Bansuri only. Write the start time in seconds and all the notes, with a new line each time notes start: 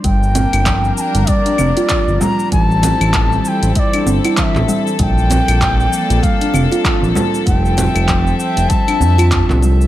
0.05 G5
0.98 G5 A5
1.29 D5
2.21 A#5
2.52 A5
3.44 G5 A5
3.75 D5 E5
4.38 F5
4.43 E5
5.00 G5 A5
6.23 F5
7.46 G5
8.38 G5
8.69 A5